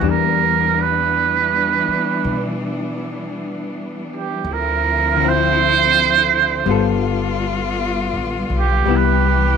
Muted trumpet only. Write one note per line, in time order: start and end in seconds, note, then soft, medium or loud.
0.00 0.11 F#4 medium
0.09 0.83 A#4 medium
0.82 2.51 B4 medium
4.16 4.54 G4 medium
4.53 5.30 A#4 medium
5.28 6.95 C5 loud
8.59 8.98 G4 medium
8.96 9.57 B4 medium